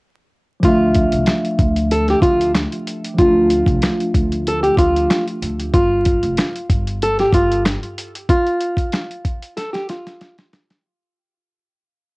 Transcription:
0.60 upright bass D2, tine electric piano F3 A3, kick, closed hi-hat
0.65 tine electric piano D4 E5, nylon-string guitar F4
0.95 kick, closed hi-hat
1.12 upright bass C2, closed hi-hat
1.26 cross-stick, snare, closed hi-hat
1.45 closed hi-hat
1.59 upright bass D2, kick, closed hi-hat
1.76 closed hi-hat
1.91 nylon-string guitar A4, closed hi-hat
2.08 nylon-string guitar G4, snare, closed hi-hat
2.22 upright bass D2, nylon-string guitar F4, kick, closed hi-hat
2.41 closed hi-hat
2.55 cross-stick, snare, closed hi-hat
2.72 closed hi-hat
2.87 closed hi-hat
3.04 closed hi-hat
3.14 tine electric piano F3 A3
3.18 upright bass D2, tine electric piano D4 F4, nylon-string guitar F4, kick, closed hi-hat
3.50 closed hi-hat
3.66 upright bass C2, kick, closed hi-hat
3.82 cross-stick, snare, closed hi-hat
4.00 closed hi-hat
4.14 upright bass D2, kick, closed hi-hat
4.32 closed hi-hat
4.47 nylon-string guitar A4, closed hi-hat
4.63 nylon-string guitar G4, closed hi-hat
4.77 upright bass D2, nylon-string guitar F4, kick, closed hi-hat
4.96 closed hi-hat
5.10 cross-stick, snare, closed hi-hat
5.28 closed hi-hat
5.42 upright bass D2, closed hi-hat
5.60 closed hi-hat
5.74 upright bass G1, nylon-string guitar F4, kick, closed hi-hat
6.05 kick, closed hi-hat
6.23 upright bass F1, closed hi-hat
6.37 cross-stick, snare, closed hi-hat
6.56 closed hi-hat
6.69 upright bass G1, kick, closed hi-hat
6.87 closed hi-hat
7.02 nylon-string guitar A4, closed hi-hat
7.19 nylon-string guitar G4, snare, closed hi-hat
7.33 upright bass G1, nylon-string guitar F4, kick, closed hi-hat
7.52 closed hi-hat
7.65 cross-stick, snare, closed hi-hat
7.83 closed hi-hat
7.98 closed hi-hat
8.15 closed hi-hat
8.29 nylon-string guitar F4, kick, closed hi-hat
8.47 closed hi-hat
8.61 closed hi-hat
8.77 kick, closed hi-hat
8.92 cross-stick, snare, closed hi-hat
9.11 closed hi-hat
9.25 kick, closed hi-hat
9.42 closed hi-hat
9.57 nylon-string guitar A4, snare, closed hi-hat
9.73 nylon-string guitar G4, snare, closed hi-hat
9.89 nylon-string guitar F4, snare, closed hi-hat
10.07 snare, closed hi-hat
10.21 snare, closed hi-hat
10.38 snare, closed hi-hat
10.53 snare, closed hi-hat
10.70 snare, closed hi-hat

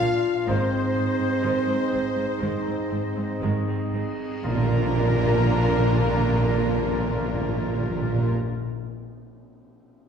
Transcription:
Already playing: trombone section A#2 D4, pipe organ A#3 F4 A#4 D5, french horn section F4, flute F5, violin section F5, trumpet section F5
0.01 double bass section A#1, viola section A#3 D4
0.47 double bass section G#1, cello section G#2, trombone section G#2 D#4, viola section D#3 G#3, pipe organ C4 D#4 G#4 D#5, french horn section C4, trumpet section C5, flute C5, violin section C5
0.95 double bass section G#1, cello section G#2, viola section C4 D#4
1.19 cello section G#2, viola section G#3 C4
1.42 double bass section G#1, cello section G#2, viola section D#3 G#3
1.66 cello section G#2, viola section G#3 C4
1.91 double bass section G#1, cello section G#2, viola section C4 D#4
2.15 cello section G#2, viola section G#3 C4
2.39 double bass section G#1, cello section G#2, viola section D#3 G#3
2.65 cello section G#2, viola section G#3 C4
2.89 double bass section G#1, cello section G#2, viola section C4 D#4
3.15 cello section G#2, viola section G#3 C4
3.42 double bass section G#1, cello section G#2, viola section D#3 G#3
3.68 cello section G#2, viola section G#3 C4
3.92 double bass section G#1, cello section G#2, viola section C4 D#4
4.43 double bass section A#1, trombone section F2 D4, timpani A#2, cello section A#2, pipe organ A#3 F4 A#4 D5, viola section A#3 D4, violin section F4 A#4, french horn section A#4, trumpet section A#4, flute A#5, tam-tam
4.51 timpani A#2
4.57 timpani A#2
4.65 timpani A#2
4.71 timpani A#2
4.78 timpani A#2
4.84 timpani A#2
4.91 timpani A#2
4.97 timpani A#2
5.04 timpani A#2
5.10 timpani A#2
5.17 timpani A#2
5.25 timpani A#2
5.31 timpani A#2
5.38 timpani A#2
5.45 timpani A#2
5.51 timpani A#2
5.58 timpani A#2
5.64 timpani A#2
5.71 timpani A#2
5.78 timpani A#2
5.85 timpani A#2
5.92 timpani A#2
5.99 timpani A#2
6.06 timpani A#2
6.12 timpani A#2
6.19 timpani A#2
6.25 timpani A#2
6.32 timpani A#2
6.38 timpani A#2
6.45 timpani A#2
6.52 timpani A#2
6.58 timpani A#2
6.65 timpani A#2
6.72 timpani A#2
6.79 timpani A#2
6.86 timpani A#2
6.92 timpani A#2
6.99 timpani A#2
7.06 timpani A#2
7.14 timpani A#2
7.20 timpani A#2
7.27 timpani A#2
7.34 timpani A#2
7.41 timpani A#2
7.49 timpani A#2
7.56 timpani A#2
7.62 timpani A#2
7.69 timpani A#2
7.76 timpani A#2
7.82 timpani A#2
7.89 timpani A#2
7.96 timpani A#2
8.02 timpani A#2
8.09 timpani A#2
8.16 timpani A#2
8.23 timpani A#2

